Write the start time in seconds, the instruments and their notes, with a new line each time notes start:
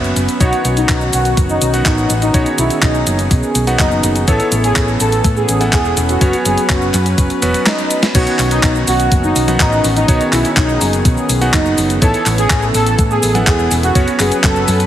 Already playing: fingered electric bass F#1, analog synth pad F#3 B3 C#4 B4, electric grand piano B3 C#4 F#4 E5
0.04 closed hi-hat, cabasa
0.16 fingered electric bass F#1, closed hi-hat, cabasa
0.29 closed hi-hat, cabasa
0.41 fingered electric bass B1, analog synth pad D#3 C#4 F#4, electric grand piano B3 D#4 F#4 C#5, analog polysynth F#4, kick, closed hi-hat, cabasa
0.53 closed hi-hat, cabasa
0.65 fingered electric bass B1, closed hi-hat, cabasa
0.77 analog polysynth D#4, closed hi-hat, cabasa
0.89 fingered electric bass B1, kick, clap, closed hi-hat, cabasa
1.01 cabasa
1.13 fingered electric bass B1, analog polysynth F#4, closed hi-hat, cabasa
1.25 closed hi-hat, cabasa
1.37 fingered electric bass F#1, kick, closed hi-hat, cabasa
1.49 analog polysynth D#4, cabasa
1.62 fingered electric bass B1, closed hi-hat, cabasa
1.74 electric grand piano B3 D#4 F#4 F#5, closed hi-hat, cabasa
1.86 fingered electric bass A1, analog polysynth D#4, kick, clap, closed hi-hat, cabasa
1.98 cabasa
2.10 fingered electric bass A1, closed hi-hat, cabasa
2.22 analog polysynth D#4, closed hi-hat, cabasa
2.34 fingered electric bass B1, electric grand piano B3 D#4 F#4 C#5, analog synth pad G#4, kick, closed hi-hat, cabasa
2.46 closed hi-hat, cabasa
2.58 fingered electric bass B1, analog polysynth E4, closed hi-hat, cabasa
2.70 closed hi-hat, cabasa
2.82 fingered electric bass B1, analog polysynth D#4, kick, clap, closed hi-hat, cabasa
2.95 cabasa
3.07 fingered electric bass F#1, closed hi-hat, cabasa
3.19 closed hi-hat, cabasa
3.31 fingered electric bass B1, kick, closed hi-hat, cabasa
3.43 cabasa
3.55 fingered electric bass B1, closed hi-hat, cabasa
3.67 electric grand piano B3 D#4 F#4 F#5, closed hi-hat, cabasa
3.79 fingered electric bass F#1, analog polysynth D#4, kick, clap, closed hi-hat, cabasa
3.92 cabasa
4.04 fingered electric bass F#1, closed hi-hat, cabasa
4.16 closed hi-hat, cabasa
4.28 fingered electric bass A1, analog synth pad E3 B3 C#4 A4, electric grand piano B3 E4 A4 C#5, analog polysynth A4, kick, closed hi-hat, cabasa
4.40 closed hi-hat, cabasa
4.52 fingered electric bass A1, closed hi-hat, cabasa
4.64 analog polysynth G#4, closed hi-hat, cabasa
4.76 fingered electric bass A1, kick, clap, closed hi-hat, cabasa
4.88 cabasa
5.00 fingered electric bass A1, analog polysynth A4, closed hi-hat, cabasa
5.12 closed hi-hat, cabasa
5.24 fingered electric bass A2, kick, closed hi-hat, cabasa
5.36 analog polysynth G#4, cabasa
5.49 fingered electric bass A1, closed hi-hat, cabasa
5.61 electric grand piano B3 E4 A4 F#5, closed hi-hat, cabasa
5.73 fingered electric bass E1, analog polysynth G#4, kick, clap, closed hi-hat, cabasa
5.85 cabasa
5.97 fingered electric bass E1, closed hi-hat, cabasa
6.09 analog polysynth F#4, closed hi-hat, cabasa
6.21 fingered electric bass F#1, analog synth pad F#3 B4, electric grand piano B3 C#4 F#4 C#5, kick, closed hi-hat, cabasa
6.33 closed hi-hat, cabasa
6.45 fingered electric bass F#1, analog polysynth G#4, closed hi-hat, cabasa
6.58 closed hi-hat, cabasa
6.69 fingered electric bass F#1, analog polysynth F#4, kick, clap, closed hi-hat, cabasa
6.82 cabasa
6.94 fingered electric bass F#2, clap, closed hi-hat, cabasa
7.06 closed hi-hat, cabasa
7.18 fingered electric bass F#1, kick, closed hi-hat, cabasa
7.30 closed hi-hat, cabasa
7.42 fingered electric bass E1, electric grand piano B3 C#4 F#4 B4, closed hi-hat, cabasa
7.54 closed hi-hat, cabasa
7.66 analog polysynth D#4, snare, clap, closed hi-hat, cabasa
7.78 closed hi-hat, cabasa
7.91 closed hi-hat, cabasa
8.03 snare, closed hi-hat, cabasa
8.15 fingered electric bass B1, analog synth pad D#3 B3 C#4 F#4, electric grand piano B3 D#4 F#4 C#5, analog polysynth F#4, kick, closed hi-hat, crash, cabasa
8.27 closed hi-hat, cabasa
8.39 fingered electric bass B1, clap, open hi-hat, cabasa
8.51 analog polysynth D#4, closed hi-hat, cabasa
8.63 fingered electric bass B1, kick, clap, closed hi-hat, cabasa
8.75 cabasa
8.87 fingered electric bass B1, analog polysynth F#4, open hi-hat, cabasa
9.00 closed hi-hat, cabasa
9.12 fingered electric bass F#1, kick, closed hi-hat, cabasa
9.24 analog polysynth D#4, cabasa
9.36 fingered electric bass B1, open hi-hat, cabasa
9.48 electric grand piano B3 D#4 F#4 F#5, closed hi-hat, high tom, cabasa
9.60 fingered electric bass A1, analog polysynth D#4, kick, clap, closed hi-hat, cabasa
9.72 cabasa
9.84 fingered electric bass A1, open hi-hat, cabasa
9.96 analog polysynth D#4, closed hi-hat, cabasa
10.08 fingered electric bass B1, electric grand piano B3 D#4 F#4 C#5, analog synth pad G#4, kick, closed hi-hat, cabasa
10.21 closed hi-hat, cabasa
10.33 fingered electric bass B1, analog polysynth E4, clap, open hi-hat, cabasa
10.45 closed hi-hat, cabasa
10.57 fingered electric bass B1, analog polysynth D#4, kick, clap, closed hi-hat, cabasa
10.69 cabasa
10.81 fingered electric bass F#1, open hi-hat, cabasa
10.93 closed hi-hat, cabasa
11.05 fingered electric bass B1, kick, closed hi-hat, cabasa
11.17 cabasa
11.29 fingered electric bass B1, open hi-hat, cabasa
11.41 electric grand piano B3 D#4 F#4 F#5, closed hi-hat, cabasa
11.54 fingered electric bass F#1, analog polysynth D#4, kick, clap, closed hi-hat, cabasa
11.66 cabasa
11.78 fingered electric bass F#1, open hi-hat, cabasa
11.90 closed hi-hat, cabasa
12.02 fingered electric bass A1, analog synth pad E3 C#4 A4, electric grand piano B3 E4 A4 C#5, analog polysynth A4, kick, closed hi-hat, cabasa
12.14 closed hi-hat, cabasa
12.26 fingered electric bass A1, clap, open hi-hat, cabasa
12.38 analog polysynth G#4, closed hi-hat, cabasa
12.50 fingered electric bass A1, kick, clap, closed hi-hat, cabasa
12.62 cabasa
12.74 fingered electric bass A1, analog polysynth A4, open hi-hat, cabasa
12.86 closed hi-hat, cabasa
12.99 fingered electric bass A2, kick, closed hi-hat, cabasa
13.11 analog polysynth G#4, cabasa
13.23 fingered electric bass A1, open hi-hat, cabasa
13.35 electric grand piano B3 E4 A4 F#5, closed hi-hat, high tom, cabasa
13.47 fingered electric bass E1, analog polysynth G#4, kick, clap, closed hi-hat, cabasa
13.59 cabasa
13.71 fingered electric bass E1, open hi-hat, cabasa
13.83 analog polysynth F#4, closed hi-hat, cabasa
13.95 fingered electric bass F#1, analog synth pad F#3 B4, electric grand piano B3 C#4 F#4 C#5, kick, closed hi-hat, cabasa
14.08 closed hi-hat, cabasa
14.20 fingered electric bass F#1, analog polysynth G#4, clap, open hi-hat, cabasa
14.32 closed hi-hat, cabasa
14.44 fingered electric bass F#1, analog polysynth A4, kick, clap, closed hi-hat, cabasa
14.56 cabasa
14.68 fingered electric bass F#2, open hi-hat, cabasa
14.80 closed hi-hat, cabasa